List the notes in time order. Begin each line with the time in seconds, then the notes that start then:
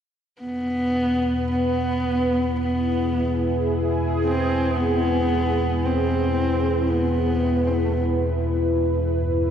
0.39 E2 B2 B3 B4
1.51 B3
2.38 E4
2.60 B3
2.84 G#4
4.25 C4
4.76 B3
5.85 C4
6.90 B3
7.67 C4
7.74 B3
7.85 A3
7.93 B3
9.10 G2